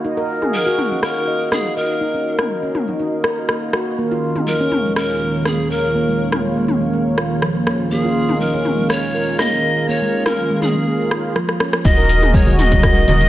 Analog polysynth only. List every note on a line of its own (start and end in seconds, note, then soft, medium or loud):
0.05 3.95 F#4 medium
0.05 3.95 A#4 medium
0.05 3.95 D#5 medium
3.98 7.89 D#3 medium
3.98 7.89 C#4 medium
3.98 7.89 F4 medium
3.98 7.89 G#4 medium
3.98 7.89 A#4 medium
3.98 7.89 F5 medium
7.91 11.36 D#3 medium
7.91 11.36 C#4 medium
7.91 11.36 F4 medium
7.91 11.36 G#4 medium
7.91 11.36 A#4 medium
7.91 11.36 F5 medium
11.85 13.05 F#4 medium
11.85 13.05 A#4 medium
11.85 13.05 D#5 loud
13.08 13.29 F#4 medium
13.08 13.29 A#4 medium
13.08 13.29 D#5 loud